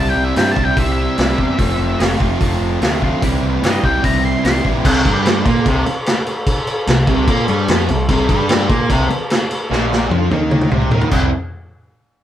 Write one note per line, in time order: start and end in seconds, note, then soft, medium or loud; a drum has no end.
0.00 0.10 C2 medium
0.00 0.34 C3 medium
0.00 0.35 G3 medium
0.00 0.36 C4 loud
0.00 0.36 E4 loud
0.10 0.24 G5 medium
0.16 0.31 C2 medium
0.24 0.37 E5 medium
0.36 0.51 G2 medium
0.36 0.55 C3 medium
0.36 0.55 G3 medium
0.36 0.56 C4 medium
0.36 0.56 E4 medium
0.36 0.52 G5 medium
0.36 snare loud
0.36 open hi-hat medium
0.52 0.64 A5 medium
0.56 0.72 C2 medium
0.56 0.76 C3 medium
0.56 0.76 G3 medium
0.56 0.78 C4 medium
0.56 0.77 E4 medium
0.56 kick medium
0.65 0.78 G5 medium
0.77 1.06 C2 medium
0.77 1.16 C3 medium
0.77 1.17 G3 medium
0.77 1.18 C4 loud
0.77 1.18 E4 medium
0.77 0.91 E5 medium
0.77 kick loud
0.77 open hi-hat medium
0.93 2.11 E5 medium
1.17 1.33 C2 medium
1.17 1.37 C3 medium
1.17 1.38 G3 medium
1.17 1.39 C4 medium
1.17 1.39 E4 medium
1.17 snare loud
1.17 open hi-hat soft
1.38 1.53 E2 medium
1.38 1.57 C3 medium
1.38 1.58 G3 medium
1.38 1.59 C4 medium
1.38 1.59 E4 medium
1.38 kick medium
1.58 1.74 F1 medium
1.58 1.98 F3 medium
1.58 1.99 A3 loud
1.58 2.00 C4 medium
1.58 2.00 F4 medium
1.58 kick loud
1.58 open hi-hat medium
1.79 1.94 F1 medium
1.99 2.15 F1 medium
1.99 2.19 F3 medium
1.99 2.19 A3 loud
1.99 2.21 C4 medium
1.99 2.21 F4 loud
1.99 snare loud
1.99 open hi-hat soft
2.20 2.35 F1 medium
2.20 2.39 F3 medium
2.20 2.40 A3 medium
2.20 2.41 C4 medium
2.20 2.41 F4 loud
2.20 kick medium
2.40 2.56 F1 medium
2.40 2.80 F3 medium
2.40 2.81 A3 medium
2.40 2.82 C4 medium
2.40 2.82 F4 loud
2.40 kick loud
2.40 open hi-hat medium
2.61 2.76 F1 medium
2.82 3.11 D2 medium
2.82 3.01 F3 medium
2.82 3.01 A3 medium
2.82 3.03 C4 medium
2.82 3.02 F4 medium
2.82 snare loud
2.82 open hi-hat soft
3.02 3.21 F3 medium
3.02 3.22 A3 medium
3.02 3.23 C4 medium
3.02 3.22 F4 medium
3.02 kick medium
3.21 3.37 C2 medium
3.21 3.61 C3 medium
3.21 3.62 E3 loud
3.21 3.63 G3 medium
3.21 3.63 C4 loud
3.21 3.63 E4 loud
3.21 kick loud
3.21 open hi-hat medium
3.43 3.58 C2 medium
3.62 3.78 G2 medium
3.62 3.81 C3 medium
3.62 3.82 E3 medium
3.62 3.83 G3 medium
3.62 3.83 C4 medium
3.62 3.84 E4 medium
3.62 3.83 D#5 medium
3.62 snare loud
3.62 open hi-hat medium
3.82 3.98 C2 medium
3.82 4.02 C3 medium
3.82 4.02 E3 medium
3.82 4.03 G3 medium
3.82 4.04 C4 medium
3.82 4.04 E4 medium
3.82 4.04 G5 medium
3.82 kick medium
4.03 4.33 C2 medium
4.03 4.43 C3 medium
4.03 4.43 E3 medium
4.03 4.44 G3 medium
4.03 4.44 C4 medium
4.03 4.45 E4 medium
4.03 4.24 A#5 medium
4.03 kick loud
4.03 open hi-hat medium
4.25 4.44 C6 medium
4.44 4.59 C2 medium
4.44 4.64 C3 medium
4.44 4.64 E3 medium
4.44 4.65 G3 medium
4.44 4.65 C4 medium
4.44 4.66 E4 medium
4.44 4.65 C6 medium
4.44 snare loud
4.44 open hi-hat medium
4.65 4.79 A#1 medium
4.65 4.84 C3 medium
4.65 4.84 E3 medium
4.65 4.85 G3 medium
4.65 4.85 C4 medium
4.65 4.85 E4 medium
4.65 kick medium
4.85 5.04 C2 medium
4.85 5.05 C3 loud
4.85 kick loud
4.85 crash loud
4.85 crash medium
5.05 5.43 G2 medium
5.05 5.46 G3 loud
5.05 kick loud
5.05 crash medium
5.26 snare loud
5.26 crash medium
5.45 5.65 A#2 loud
5.45 5.66 A#3 loud
5.45 kick loud
5.45 crash medium
5.66 5.85 C2 medium
5.66 5.86 C3 medium
5.66 kick loud
5.66 crash medium
5.86 muted picked electric bass stroke soft
5.86 muted distorted electric guitar stroke medium
5.86 crash medium
6.06 snare loud
6.06 crash medium
6.26 crash medium
6.47 kick loud
6.47 crash medium
6.67 crash medium
6.87 7.07 C2 medium
6.87 7.04 C3 medium
6.87 snare loud
6.87 crash medium
7.07 7.26 C2 loud
7.07 7.28 C3 loud
7.07 kick loud
7.07 crash medium
7.27 7.47 A#2 medium
7.27 7.48 A#3 loud
7.27 kick loud
7.27 crash medium
7.48 7.67 G2 medium
7.48 7.68 G3 loud
7.48 crash medium
7.68 7.88 F2 medium
7.68 7.89 F3 loud
7.68 snare loud
7.68 crash medium
7.89 8.08 C2 medium
7.89 8.06 C3 medium
7.89 crash medium
8.09 8.28 C2 loud
8.09 8.29 C3 loud
8.09 kick loud
8.09 crash medium
8.29 8.67 G2 medium
8.29 8.69 G3 loud
8.29 kick loud
8.29 crash medium
8.49 snare loud
8.49 crash medium
8.69 8.88 A#2 medium
8.69 8.89 A#3 loud
8.69 kick loud
8.69 crash medium
8.90 9.09 C2 loud
8.90 9.09 C3 loud
8.90 kick loud
8.90 crash medium
9.10 muted picked electric bass stroke soft
9.10 muted distorted electric guitar stroke medium
9.10 crash medium
9.30 snare loud
9.30 crash medium
9.51 crash medium
9.71 10.08 A#1 medium
9.71 10.11 A#2 loud
9.71 snare medium
9.93 snare medium
10.10 10.30 F2 medium
10.10 10.31 F3 loud
10.10 high tom medium
10.31 10.69 D#2 medium
10.31 10.71 D#3 loud
10.31 high tom medium
10.51 mid tom medium
10.61 mid tom medium
10.71 10.91 C2 medium
10.71 10.91 C3 loud
10.71 mid tom medium
10.81 mid tom medium
10.91 11.11 D#2 medium
10.91 11.11 D#3 loud
10.91 mid tom medium
11.01 floor tom medium
11.11 11.31 C2 medium
11.11 11.28 C3 medium
11.11 11.28 G3 medium
11.11 11.28 C4 medium
11.11 11.29 E4 loud
11.11 kick loud
11.11 crash medium